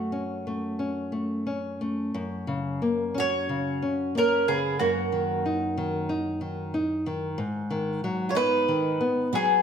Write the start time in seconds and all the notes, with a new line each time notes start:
Already playing: F#2 A3 F#4
0.12 C#4
0.47 A3
0.79 C#4
1.12 A3
1.47 C#4
1.81 A3
2.14 F#2
2.47 C#3
2.82 A#3
3.14 C#4 F#4
3.20 C#5
3.49 C#3
3.82 C#4
4.15 A#3 C#4 A#4
4.48 C#3 B3 G#4
4.79 F#2 A#3 F#4
5.12 D#3
5.46 D#4
5.78 D#3
6.09 D#4
6.41 D#3
6.74 D#4
7.06 D#3
7.38 G#2
7.70 D#3
8.04 F#3
8.29 F4 C#5
8.35 B3 D#4 B4
8.68 D#3
9.01 B3
9.33 F#3 B3 G#4